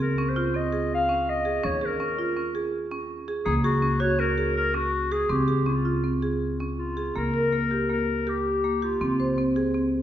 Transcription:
0.00 1.61 C#2 medium
0.00 0.15 G#4 medium
0.00 0.31 A#4 medium
0.18 0.33 C#4 medium
0.29 0.58 C5 medium
0.36 0.51 F4 medium
0.54 0.69 C4 medium
0.54 0.92 D#5 medium
0.72 1.03 G#4 medium
0.94 1.31 F5 medium
1.09 1.39 C#4 medium
1.29 1.67 D#5 medium
1.45 1.60 G#4 medium
1.64 3.43 D#2 medium
1.64 1.79 C#4 medium
1.64 1.87 C#5 medium
1.81 1.97 G#4 medium
1.81 2.56 A#4 medium
2.00 2.15 C#4 medium
2.18 2.34 F4 medium
2.37 2.52 C#4 medium
2.55 2.85 G#4 medium
2.92 3.21 C#4 medium
3.28 3.43 G#4 medium
3.45 5.26 C#2 medium
3.45 3.61 A#3 medium
3.45 3.54 G#4 medium
3.64 4.02 F#4 medium
3.64 3.79 G#4 medium
3.82 3.97 C#4 medium
4.00 4.15 F#4 medium
4.00 4.21 C#5 medium
4.19 4.34 C#4 medium
4.19 4.55 A#4 medium
4.38 4.68 G#4 medium
4.56 4.76 A#4 medium
4.74 5.04 C#4 medium
4.74 5.13 F#4 medium
5.12 5.26 G#4 medium
5.12 5.32 G#4 medium
5.29 7.12 C#2 medium
5.29 5.45 C4 medium
5.29 5.67 G4 medium
5.48 5.63 G#4 medium
5.66 5.82 C#4 medium
5.66 6.19 F4 medium
5.85 6.00 F4 medium
6.04 6.19 C4 medium
6.23 6.53 G#4 medium
6.60 6.91 C#4 medium
6.79 7.19 F4 medium
6.97 7.12 G#4 medium
7.16 8.98 C#2 medium
7.16 7.31 A#3 medium
7.16 7.91 A#4 medium
7.34 7.49 A#4 medium
7.53 7.68 A#3 medium
7.71 7.87 G4 medium
7.90 8.20 A#3 medium
7.90 8.30 A#4 medium
8.27 8.58 G4 medium
8.27 8.86 G4 medium
8.64 8.79 A#3 medium
8.82 9.57 F4 medium
8.82 8.98 G4 medium
9.01 10.02 C#2 medium
9.01 9.16 C4 medium
9.20 9.35 C5 medium
9.38 9.53 C4 medium
9.56 9.71 G#4 medium
9.74 10.02 C4 medium

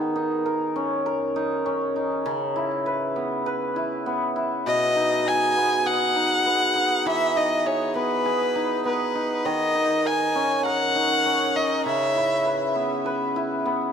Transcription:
0.00 2.31 D#3 medium
0.00 0.52 B3 medium
0.00 0.15 D#4 medium
0.00 1.69 G#4 medium
0.16 1.35 D#4 medium
0.46 1.06 A#4 medium
0.76 1.65 C#4 medium
1.06 2.92 A#4 medium
1.36 1.95 D#4 medium
1.66 8.23 C#4 medium
1.96 2.62 D#4 medium
2.26 4.71 C#3 medium
2.56 3.76 E4 medium
2.86 3.46 B4 medium
3.16 4.06 B3 medium
3.46 8.11 B4 medium
3.76 4.35 E4 medium
4.06 5.56 B3 medium
4.36 5.02 E4 medium
4.66 7.11 B2 medium
4.66 5.29 D#5 loud
4.96 6.15 D#4 medium
5.26 5.86 G#4 medium
5.26 5.88 G#5 loud
5.56 6.45 B3 medium
5.86 7.65 G#4 medium
5.86 7.08 F#5 loud
6.16 6.75 D#4 medium
6.46 7.95 B3 medium
6.75 7.35 D#4 medium
7.06 9.51 E3 medium
7.06 7.38 E5 loud
7.36 8.55 D#4 medium
7.36 7.68 D#5 loud
7.66 8.25 G#4 medium
7.66 7.96 C#5 medium
7.95 8.85 B3 medium
7.95 8.82 B4 loud
8.25 11.29 G#4 medium
8.56 9.15 D#4 medium
8.85 10.11 B3 medium
8.85 9.48 B4 medium
9.15 9.75 D#4 medium
9.45 11.91 D#3 medium
9.45 10.08 D#5 loud
9.75 10.95 D#4 medium
10.05 10.65 A#4 medium
10.05 10.65 G#5 medium
10.35 11.25 C#4 medium
10.65 12.52 A#4 medium
10.65 11.58 F#5 loud
10.96 11.55 D#4 medium
11.26 13.92 C#4 medium
11.55 12.22 D#4 medium
11.55 11.85 D#5 medium
11.86 13.92 C#3 medium
11.86 12.72 E5 loud
12.16 13.36 E4 medium
12.46 13.05 B4 medium
12.75 13.65 B3 medium
13.06 13.92 B4 medium
13.36 13.92 E4 medium
13.66 13.92 B3 medium

